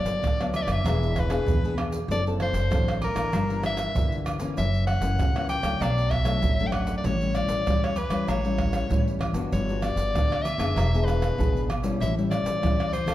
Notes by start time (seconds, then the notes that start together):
Already playing: G2 F#3 B3 D4 D5
0.05 G1, pandeiro, shaker
0.22 D2 D3, pandeiro, tamborim, shaker, surdo
0.41 F#3 B3 D4, pandeiro, tamborim, shaker
0.54 E5, pandeiro, high agogo, shaker
0.62 D5
0.67 F#1, pandeiro, tamborim, high agogo, shaker
0.72 E5
0.84 E1 E3 B3 D4 G#4, pandeiro, tamborim, low agogo, shaker, surdo
1.03 pandeiro, shaker
1.16 B4, pandeiro, tamborim, shaker, surdo
1.30 B3 D4 G#4, pandeiro, tamborim, shaker
1.47 E2 B2, pandeiro, shaker, surdo
1.64 B3 D4 G#4, pandeiro, shaker
1.78 B3 D4 G#4, pandeiro, tamborim, high agogo
1.92 pandeiro, shaker
2.08 F#1 F#3 C4 D4 A4 D5, pandeiro, shaker, surdo
2.27 C4 D4 A4, pandeiro, shaker
2.40 C5, pandeiro, tamborim
2.53 F#1, pandeiro, shaker
2.71 A1 F#3 C4 D4 A4, pandeiro, tamborim, shaker, surdo
2.88 pandeiro, tamborim, shaker
3.02 A#4, pandeiro, high agogo
3.15 A1 E3 A#3 D4, pandeiro, tamborim, high agogo, shaker
3.33 G1 G2, pandeiro, tamborim, low agogo, shaker, surdo
3.50 E3 A#3 D4, pandeiro, shaker
3.63 E5, pandeiro, tamborim, shaker
3.77 pandeiro, tamborim, shaker
3.95 G1 D3 E3 A#3 D4, pandeiro, shaker, surdo
4.12 pandeiro, shaker
4.26 pandeiro, tamborim, high agogo, shaker
4.40 E3 A#3 C#4, pandeiro, shaker
4.57 F#1 F#2 E5, pandeiro, shaker, surdo
4.74 pandeiro, shaker
4.87 F#5, pandeiro, tamborim
5.01 F#1 E3 A#3 C#4, pandeiro, shaker
5.19 C#2 C#3, pandeiro, tamborim, shaker, surdo
5.36 E3 A#3 C#4, pandeiro, tamborim, shaker
5.49 G5, pandeiro, high agogo, shaker
5.63 C#2 F#3 A3 D4, pandeiro, tamborim, high agogo, shaker
5.80 B1 B2 D5, pandeiro, tamborim, low agogo, shaker, surdo
5.98 pandeiro, shaker
6.10 E5, pandeiro, tamborim, surdo
6.25 F#3 A3 D4, pandeiro, tamborim, shaker
6.42 G#1 F#2, pandeiro, shaker, surdo
6.59 F#3 A3 D4, pandeiro, shaker
6.67 G5
6.72 F#5, pandeiro, tamborim, high agogo
6.87 pandeiro, shaker
6.97 D5
7.04 A1 A2 G3 C#4 E4 C#5, pandeiro, shaker, surdo
7.21 G3 C#4 E4, pandeiro, shaker
7.35 D5, pandeiro, tamborim, shaker
7.48 A1, pandeiro, shaker
7.66 E2 E3 G3 C#4 E4, pandeiro, tamborim, shaker, surdo
7.84 C#5, pandeiro, tamborim, shaker
7.96 B4, pandeiro, high agogo, shaker
8.10 E2 G3 C#4 E4, pandeiro, tamborim, high agogo, shaker
8.28 A1 A2 C#5, pandeiro, tamborim, low agogo, shaker, surdo
8.45 G3 C#4 E4, pandeiro, shaker
8.58 pandeiro, tamborim, surdo
8.73 pandeiro, tamborim, shaker
8.90 A2 E3 G3 C#4 E4, pandeiro, shaker, surdo
9.07 pandeiro, shaker
9.19 A1, pandeiro, tamborim, high agogo
9.33 G1 B3 D4 F#4, pandeiro, shaker
9.52 G1 G3 C#5, pandeiro, shaker, surdo
9.69 B3 D4 F#4, pandeiro, shaker
9.82 D5, pandeiro, tamborim, shaker
9.96 G1, pandeiro, shaker
10.14 D2 D3 B3 D4 F#4, pandeiro, tamborim, shaker, surdo
10.32 pandeiro, tamborim, shaker
10.42 E5, pandeiro, high agogo, shaker
10.58 F#1 B3 D4 G#4, pandeiro, tamborim, high agogo, shaker
10.76 E1 E3, pandeiro, tamborim, low agogo, shaker, surdo
10.94 B3 D4 G#4, pandeiro, shaker
11.05 B4, pandeiro, tamborim, shaker
11.22 pandeiro, tamborim, shaker
11.38 G#1 B2 B3 D4 G#4, pandeiro, shaker, surdo
11.56 pandeiro, shaker
11.70 pandeiro, tamborim, high agogo, shaker
11.83 G3 C#4 E4, pandeiro, shaker
12.00 A1 A2 E5, pandeiro, shaker, surdo
12.17 G3 C#4 E4, pandeiro, shaker
12.31 D5, pandeiro, tamborim, shaker
12.44 A1, pandeiro, shaker
12.62 E2 E3 G3 C#4 E4, pandeiro, tamborim, shaker, surdo
12.80 pandeiro, tamborim, shaker
12.93 C5, pandeiro, high agogo, shaker
13.06 C#2 C4 F#4 A4, pandeiro, tamborim, high agogo, shaker